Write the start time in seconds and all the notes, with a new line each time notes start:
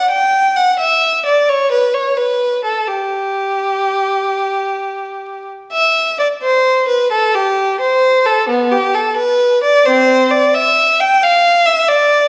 Already playing: F#5
0.10 G5
0.57 F#5
0.80 E5
1.25 D5
1.49 C#5
1.72 B4
1.94 C#5
2.17 B4
2.64 A4
2.87 G4
5.73 E5
6.19 D5
6.42 C5
6.88 B4
7.12 A4
7.35 G4
7.80 C5
8.26 A4
8.49 B3
8.72 G4
8.94 A4
9.17 B4
9.63 D5
9.85 C4 C5
10.31 D5
10.54 E5
11.00 G5
11.23 F5
11.66 E5
11.88 D5